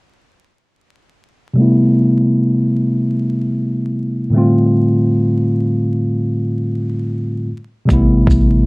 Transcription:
1.54 4.28 C3 medium
1.54 4.29 G3 medium
1.54 4.30 A3 medium
1.59 4.31 B3 medium
1.59 4.32 E4 medium
4.30 7.44 A2 medium
4.30 7.44 D3 medium
4.30 7.45 G3 medium
4.35 7.46 A3 medium
4.35 7.47 C4 medium
4.35 7.48 F4 medium
7.85 8.66 C3 medium
7.85 8.66 G3 medium
7.85 8.66 A3 medium
7.85 kick loud
7.89 8.66 A1 loud
7.89 8.66 B3 medium
7.89 8.66 E4 medium
7.89 closed hi-hat medium
8.27 kick medium
8.27 shaker medium

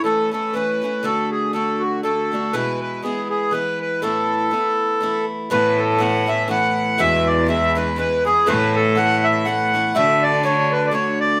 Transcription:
0.04 0.30 E3 medium
0.04 0.31 A3 medium
0.04 0.33 C#4 medium
0.04 0.34 E4 medium
0.04 0.30 A4 medium
0.31 0.52 E3 soft
0.31 0.53 A3 medium
0.31 0.54 C#4 medium
0.31 0.55 E4 medium
0.31 0.55 A4 medium
0.53 0.80 E3 medium
0.53 0.81 A3 medium
0.53 0.83 C#4 medium
0.53 0.83 E4 medium
0.53 1.06 B4 medium
0.82 1.02 E3 soft
0.82 1.02 A3 soft
0.82 1.04 C#4 medium
0.82 1.05 E4 medium
1.03 1.52 D3 medium
1.03 1.53 A3 medium
1.03 1.54 D4 medium
1.03 1.54 F#4 medium
1.03 1.30 A4 medium
1.31 1.52 G#4 medium
1.53 2.02 D3 medium
1.53 2.03 A3 medium
1.53 2.04 D4 medium
1.53 2.04 F#4 medium
1.53 1.82 A4 medium
1.80 2.01 F#4 medium
2.03 2.31 D3 medium
2.03 2.32 A3 medium
2.03 2.32 D4 medium
2.03 2.33 F#4 medium
2.03 2.55 A4 medium
2.32 2.53 D3 soft
2.32 2.54 A3 medium
2.32 2.54 D4 medium
2.32 2.54 F#4 soft
2.53 3.03 E2 medium
2.53 3.03 B2 medium
2.53 3.02 E3 medium
2.53 3.02 G#3 medium
2.53 3.04 B3 medium
2.53 3.05 E4 medium
2.53 2.80 B4 medium
2.81 3.01 B4 medium
3.02 3.51 E3 medium
3.02 3.51 G#3 medium
3.02 3.53 B3 medium
3.02 3.54 E4 medium
3.02 3.28 G#4 medium
3.29 3.53 G#4 medium
3.51 4.02 E3 medium
3.51 4.02 G#3 medium
3.51 4.03 B3 medium
3.51 4.04 E4 medium
3.51 3.79 B4 medium
3.81 4.01 B4 medium
4.02 4.52 A2 medium
4.02 4.50 E3 medium
4.02 4.51 A3 medium
4.02 4.52 B3 medium
4.02 4.53 E4 medium
4.02 5.26 A4 medium
4.51 5.00 E3 medium
4.51 5.01 A3 medium
4.51 5.02 B3 medium
4.51 5.03 E4 medium
5.01 5.51 E3 medium
5.01 5.50 A3 medium
5.01 5.51 B3 medium
5.01 5.52 E4 medium
5.50 6.00 A2 medium
5.50 6.82 A2 loud
5.50 5.98 E3 medium
5.50 5.99 A3 medium
5.50 6.00 B3 medium
5.50 6.01 E4 medium
5.50 5.80 B4 medium
5.78 6.01 A4 medium
5.98 6.25 E3 medium
5.98 6.26 A3 medium
5.98 6.27 B3 medium
5.98 6.28 E4 medium
5.98 6.29 F#5 medium
6.26 6.47 E3 medium
6.26 6.48 A3 medium
6.26 6.49 B3 medium
6.26 6.50 E4 medium
6.26 6.48 E5 medium
6.48 6.99 E3 medium
6.48 6.99 A3 medium
6.48 7.00 B3 medium
6.48 7.00 E4 medium
6.48 7.01 F#5 medium
6.98 8.30 E2 loud
6.98 7.48 E2 medium
6.98 7.48 B2 medium
6.98 7.46 E3 loud
6.98 7.47 G#3 medium
6.98 7.48 B3 medium
6.98 7.50 E4 medium
6.98 7.28 E5 loud
7.27 7.47 D5 medium
7.46 7.74 E3 medium
7.46 7.75 G#3 medium
7.46 7.76 B3 medium
7.46 7.77 E4 medium
7.46 7.77 E5 loud
7.75 7.95 E3 medium
7.75 7.97 G#3 medium
7.75 7.98 B3 medium
7.75 7.98 E4 medium
7.75 7.97 B4 medium
7.96 8.24 E3 medium
7.96 8.25 G#3 medium
7.96 8.26 B3 medium
7.96 8.26 E4 medium
7.96 8.24 B4 loud
8.25 8.46 E3 medium
8.25 8.47 G#3 medium
8.25 8.47 B3 medium
8.25 8.47 E4 medium
8.25 8.48 G#4 loud
8.46 8.96 A2 medium
8.46 9.78 A2 loud
8.46 8.94 E3 medium
8.46 8.97 A3 medium
8.46 8.97 B3 medium
8.46 8.97 E4 loud
8.46 8.76 B4 loud
8.76 8.97 A4 loud
8.95 9.44 E3 medium
8.95 9.46 A3 medium
8.95 9.46 B3 medium
8.95 9.47 E4 medium
8.95 9.25 F#5 loud
9.24 9.46 E5 medium
9.45 9.72 E3 medium
9.45 9.73 A3 medium
9.45 9.74 B3 medium
9.45 9.75 E4 medium
9.45 9.96 F#5 loud
9.74 9.94 E3 medium
9.74 9.94 A3 medium
9.74 9.96 B3 medium
9.74 9.96 E4 medium
9.95 10.42 D3 medium
9.95 11.26 D3 loud
9.95 10.44 A3 loud
9.95 10.44 D4 medium
9.95 10.45 F#4 medium
9.95 10.23 E5 loud
10.23 10.45 D5 loud
10.43 10.90 D3 medium
10.43 10.91 A3 medium
10.43 10.92 D4 medium
10.43 10.93 F#4 medium
10.43 10.73 C#5 medium
10.72 10.88 B4 medium
10.87 10.93 D5 medium
10.91 11.40 D3 medium
10.91 11.40 A3 medium
10.91 11.40 D4 medium
10.91 11.40 F#4 medium
10.91 11.19 C#5 medium
11.20 11.40 D5 medium

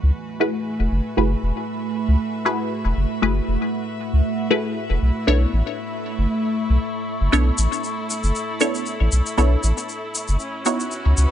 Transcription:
0.00 0.11 C#2 medium
0.00 0.37 A3 medium
0.00 10.36 A3 medium
0.00 0.37 E4 medium
0.00 0.38 F#4 medium
0.00 6.29 F#4 medium
0.00 0.38 G#4 medium
0.00 0.38 B4 medium
0.00 6.73 B4 medium
0.00 10.36 E5 medium
0.00 2.17 G#5 medium
0.00 4.98 B5 medium
0.40 1.14 A3 medium
0.40 1.14 E4 medium
0.40 1.14 F#4 medium
0.40 1.15 G#4 medium
0.40 1.15 B4 loud
0.64 6.84 E5 medium
0.80 0.88 E1 loud
0.92 1.00 F#1 medium
1.17 1.35 F#1 loud
1.17 2.42 A3 medium
1.17 2.43 E4 medium
1.17 2.43 F#4 medium
1.17 2.43 G#4 medium
1.17 2.43 B4 medium
1.43 1.51 E1 loud
2.08 2.16 C#2 medium
2.20 4.99 F#5 medium
2.45 3.19 A3 medium
2.45 3.19 E4 medium
2.45 3.20 F#4 medium
2.45 3.20 G#4 medium
2.45 3.20 B4 loud
2.85 2.93 E1 loud
2.97 3.05 F#1 medium
3.22 3.40 F#1 loud
3.22 4.48 A3 medium
3.22 4.48 E4 medium
3.22 4.48 F#4 medium
3.22 4.48 G#4 medium
3.22 4.48 B4 loud
3.48 3.57 E1 loud
4.13 4.21 C#2 medium
4.50 5.00 A3 medium
4.50 5.00 E4 medium
4.50 5.00 F#4 medium
4.50 5.00 G#4 medium
4.50 5.01 B4 loud
4.90 4.98 E1 loud
5.02 5.10 B1 medium
5.02 11.31 E4 medium
5.02 10.36 C#6 medium
5.27 5.45 B1 loud
5.27 6.53 B3 medium
5.27 6.53 D4 medium
5.27 6.53 E4 medium
5.27 6.53 A4 medium
5.27 6.53 C#5 loud
5.53 5.62 A1 loud
5.81 10.40 A4 medium
6.18 6.26 F#1 medium
6.70 6.77 B1 medium
7.21 7.29 F#1 medium
7.32 7.50 B1 loud
7.32 8.58 B3 medium
7.32 8.58 D4 medium
7.32 8.58 E4 medium
7.32 8.58 A4 medium
7.32 8.58 C#5 loud
7.32 shaker soft
7.58 7.67 A1 loud
7.58 shaker loud
7.73 shaker medium
7.84 shaker soft
8.10 shaker medium
8.23 8.31 F#1 medium
8.23 shaker medium
8.35 shaker soft
8.60 9.35 B3 medium
8.60 9.35 D4 medium
8.60 9.35 E4 medium
8.60 9.35 A4 medium
8.60 9.35 C#5 loud
8.60 shaker medium
8.75 shaker medium
8.86 shaker soft
9.00 9.08 A1 loud
9.12 9.21 B1 medium
9.12 shaker medium
9.26 shaker medium
9.37 9.56 B1 loud
9.37 10.39 B3 medium
9.37 10.39 D4 medium
9.37 10.39 E4 medium
9.37 10.39 A4 medium
9.37 10.39 C#5 loud
9.37 shaker soft
9.63 9.72 A1 loud
9.63 shaker medium
9.78 shaker medium
9.89 shaker soft
10.15 shaker loud
10.28 10.36 F#1 medium
10.28 shaker soft
10.39 11.31 C#4 medium
10.39 11.31 B4 medium
10.39 11.31 F#5 medium
10.39 11.31 D#6 medium
10.39 11.31 E6 medium
10.39 shaker soft
10.64 11.31 B3 medium
10.64 11.31 D#4 medium
10.64 11.31 E4 medium
10.64 11.31 F#4 medium
10.64 11.31 C#5 loud
10.64 shaker medium
10.80 shaker soft
10.91 shaker soft
11.05 11.13 C#2 loud
11.17 11.26 C#2 medium
11.17 11.31 B4 medium
11.17 shaker medium

